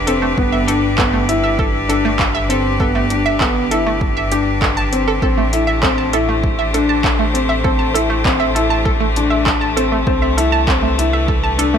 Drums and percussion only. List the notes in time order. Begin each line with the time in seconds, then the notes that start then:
0.07 closed hi-hat
0.38 kick
0.68 closed hi-hat
0.98 kick, clap
1.29 closed hi-hat
1.59 kick
1.90 closed hi-hat
2.19 kick, clap
2.50 closed hi-hat
2.80 kick
3.10 closed hi-hat
3.41 kick, clap
3.71 closed hi-hat
4.01 kick
4.32 closed hi-hat
4.62 kick, clap
4.93 closed hi-hat
5.22 kick
5.53 closed hi-hat
5.83 kick, clap
6.13 closed hi-hat
6.43 kick
6.74 closed hi-hat
7.04 kick, clap
7.35 closed hi-hat
7.65 kick
7.95 closed hi-hat
8.25 kick, clap
8.56 closed hi-hat
8.86 kick
9.16 closed hi-hat
9.46 kick, clap
9.77 closed hi-hat
10.07 kick
10.38 closed hi-hat
10.67 kick, clap
10.99 closed hi-hat
11.28 kick
11.59 closed hi-hat